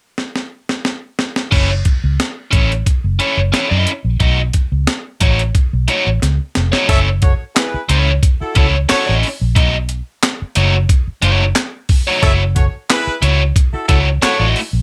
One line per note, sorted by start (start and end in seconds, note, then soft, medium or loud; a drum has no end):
0.18 snare medium
0.35 snare medium
0.69 snare medium
0.85 snare medium
1.19 snare medium
1.36 snare medium
1.51 1.81 F#1 medium
1.51 1.70 C#4 medium
1.51 1.71 E4 medium
1.51 1.71 A4 medium
1.51 1.71 C#5 medium
1.51 kick medium
1.51 crash medium
1.85 kick medium
1.85 closed hi-hat medium
2.04 2.17 C#2 medium
2.20 snare loud
2.20 closed hi-hat medium
2.51 2.82 A1 medium
2.51 2.71 C#4 medium
2.51 2.71 E4 medium
2.51 2.71 A4 medium
2.51 2.72 C#5 medium
2.51 kick medium
2.51 closed hi-hat medium
2.72 closed hi-hat soft
2.86 kick medium
2.86 closed hi-hat medium
3.04 3.18 F#1 medium
3.19 3.38 C#4 medium
3.19 3.39 E4 medium
3.19 3.39 A4 medium
3.19 3.39 C#5 loud
3.19 closed hi-hat medium
3.37 3.51 F#1 medium
3.52 3.68 C#4 medium
3.52 3.68 E4 medium
3.52 3.68 A4 medium
3.52 3.69 C#5 medium
3.52 snare loud
3.52 closed hi-hat medium
3.70 3.85 F#2 medium
3.70 3.91 C#4 medium
3.70 3.91 E4 medium
3.70 3.90 A4 medium
3.70 3.90 D#5 medium
3.87 closed hi-hat medium
4.05 4.18 A#1 medium
4.20 4.50 B1 loud
4.20 4.39 A3 medium
4.20 4.39 D#4 medium
4.20 4.40 F#4 loud
4.20 4.40 D#5 medium
4.20 kick medium
4.20 closed hi-hat medium
4.53 kick medium
4.53 closed hi-hat medium
4.72 4.86 C#2 medium
4.87 snare loud
4.87 closed hi-hat medium
5.21 5.50 A1 loud
5.21 5.40 A3 medium
5.21 5.40 D#4 medium
5.21 5.40 F#4 medium
5.21 5.41 C#5 medium
5.21 kick medium
5.21 closed hi-hat medium
5.39 closed hi-hat medium
5.55 kick medium
5.55 closed hi-hat medium
5.73 5.87 B1 medium
5.88 6.07 A3 medium
5.88 6.07 D#4 medium
5.88 6.07 F#4 medium
5.88 6.08 C#5 medium
5.88 closed hi-hat medium
6.07 6.20 A1 medium
6.22 6.38 C#2 medium
6.22 snare medium
6.22 closed hi-hat medium
6.55 6.72 F1 medium
6.55 snare medium
6.55 closed hi-hat medium
6.72 6.87 A3 medium
6.72 6.88 D#4 medium
6.72 6.89 F#4 medium
6.72 6.89 C#5 medium
6.72 snare medium
6.88 7.33 F#1 medium
6.88 7.07 C#4 medium
6.88 7.08 E4 medium
6.88 7.00 A4 loud
6.88 7.08 A4 medium
6.88 7.00 C#5 loud
6.88 7.08 C#5 medium
6.88 7.00 E5 loud
6.88 kick medium
6.88 closed hi-hat medium
7.22 7.33 F#4 medium
7.22 7.33 A4 medium
7.22 7.33 C#5 medium
7.22 kick medium
7.22 closed hi-hat medium
7.55 7.82 E4 loud
7.55 7.82 G#4 loud
7.55 7.82 B4 loud
7.55 snare loud
7.55 clap medium
7.55 closed hi-hat medium
7.74 muted fingered electric bass stroke soft
7.89 8.18 C#2 loud
7.89 8.10 C#4 medium
7.89 8.10 E4 medium
7.89 8.11 A4 medium
7.89 8.11 C#5 medium
7.89 closed hi-hat medium
8.23 kick loud
8.23 closed hi-hat medium
8.41 8.53 E4 medium
8.41 8.53 F#4 medium
8.41 8.54 A4 medium
8.41 muted fingered electric bass stroke soft
8.55 8.85 C#2 medium
8.55 8.74 C#4 medium
8.55 8.75 E4 medium
8.55 8.67 E4 medium
8.55 8.67 F#4 medium
8.55 8.67 A4 medium
8.55 8.75 A4 medium
8.55 8.76 C#5 loud
8.55 kick medium
8.55 closed hi-hat medium
8.89 9.04 C#4 medium
8.89 9.04 E4 medium
8.89 9.16 F#4 loud
8.89 9.16 A4 loud
8.89 9.05 A4 medium
8.89 9.16 C#5 loud
8.89 9.05 C#5 medium
8.89 muted fingered electric bass stroke soft
8.89 snare loud
8.89 clap medium
8.89 closed hi-hat medium
9.06 9.22 A1 medium
9.06 9.27 C#4 medium
9.06 9.27 E4 medium
9.06 9.27 A4 medium
9.06 9.26 D#5 medium
9.23 open hi-hat medium
9.41 9.57 A#1 medium
9.55 10.00 B1 loud
9.55 9.75 A3 medium
9.55 9.75 D#4 medium
9.55 9.75 F#4 loud
9.55 9.76 D#5 loud
9.55 kick loud
9.55 closed hi-hat medium
9.89 closed hi-hat medium
10.23 snare loud
10.23 clap medium
10.23 closed hi-hat medium
10.42 muted fingered electric bass stroke soft
10.55 10.85 F#1 loud
10.55 10.75 A3 loud
10.55 10.75 D#4 medium
10.55 10.75 F#4 medium
10.55 10.75 C#5 medium
10.55 closed hi-hat medium
10.89 kick medium
10.89 closed hi-hat medium
11.07 muted fingered electric bass stroke soft
11.22 11.51 F#1 medium
11.22 11.43 A3 loud
11.22 11.44 D#4 medium
11.22 11.44 F#4 medium
11.22 11.44 C#5 loud
11.22 closed hi-hat medium
11.56 snare loud
11.56 clap medium
11.56 closed hi-hat medium
11.89 kick medium
11.89 open hi-hat medium
12.07 12.21 A3 medium
12.07 12.23 D#4 medium
12.07 12.22 F#4 medium
12.07 12.24 C#5 medium
12.22 12.67 F#1 loud
12.22 12.41 A3 medium
12.22 12.42 E4 loud
12.22 12.42 F#4 loud
12.22 12.33 A4 loud
12.22 12.33 C#5 loud
12.22 12.42 C#5 loud
12.22 12.33 E5 loud
12.22 kick loud
12.22 closed hi-hat medium
12.55 12.66 F#4 medium
12.55 12.66 A4 medium
12.55 12.66 C#5 medium
12.55 kick medium
12.55 closed hi-hat medium
12.90 13.16 E4 loud
12.90 13.16 G#4 loud
12.90 13.16 B4 loud
12.90 snare medium
12.90 clap medium
12.90 closed hi-hat medium
13.07 muted fingered electric bass stroke soft
13.22 13.51 C#2 loud
13.22 13.41 A3 medium
13.22 13.41 E4 medium
13.22 13.41 F#4 medium
13.22 13.41 C#5 loud
13.22 closed hi-hat medium
13.56 kick medium
13.56 closed hi-hat medium
13.73 13.86 E4 medium
13.73 13.86 F#4 medium
13.73 13.85 A4 medium
13.73 muted fingered electric bass stroke soft
13.88 14.18 C#2 medium
13.88 14.07 A3 medium
13.88 13.99 E4 medium
13.88 14.07 E4 loud
13.88 13.99 F#4 medium
13.88 14.08 F#4 loud
13.88 13.99 A4 medium
13.88 14.08 C#5 medium
13.88 kick medium
13.88 closed hi-hat medium
14.22 14.36 A3 medium
14.22 14.37 E4 medium
14.22 14.48 F#4 loud
14.22 14.37 F#4 medium
14.22 14.48 A4 loud
14.22 14.48 C#5 loud
14.22 14.37 C#5 medium
14.22 muted fingered electric bass stroke soft
14.22 snare loud
14.22 clap loud
14.22 closed hi-hat medium
14.39 14.53 A1 medium
14.39 14.59 A3 medium
14.39 14.59 E4 medium
14.39 14.59 F#4 medium
14.39 14.58 D#5 medium
14.56 open hi-hat medium
14.73 14.82 A#1 medium